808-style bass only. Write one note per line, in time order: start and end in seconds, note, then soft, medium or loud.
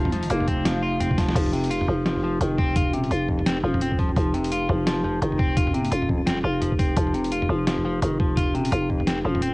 0.00 0.29 F1 loud
0.30 1.34 F1 loud
1.35 1.87 F1 loud
1.88 2.40 F1 loud
2.41 2.90 F1 loud
2.90 3.10 E1 loud
3.11 3.62 F1 loud
3.64 4.15 D#1 loud
4.16 4.68 F1 loud
4.69 5.21 F1 loud
5.22 5.91 F1 loud
5.92 6.43 D#1 loud
6.44 6.96 F1 loud
6.97 7.48 F1 loud
7.49 8.01 F1 loud
8.02 8.51 F1 loud
8.51 8.71 E1 loud
8.72 9.24 F1 loud
9.25 9.54 D#1 loud